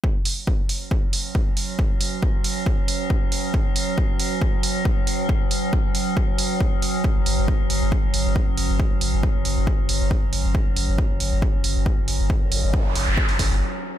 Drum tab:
HH |--o---o---o---o-|--o---o---o---o-|--o---o---o---o-|--o---o---o---o-|
BD |o---o---o---o---|o---o---o---o---|o---o---o---o---|o---o---o---o---|

HH |--o---o---o---o-|--o---o---o---o-|--o---o---o---o-|--o---o--oo-----|
BD |o---o---o---o---|o---o---o---o---|o---o---o---o---|o---o---o-o-----|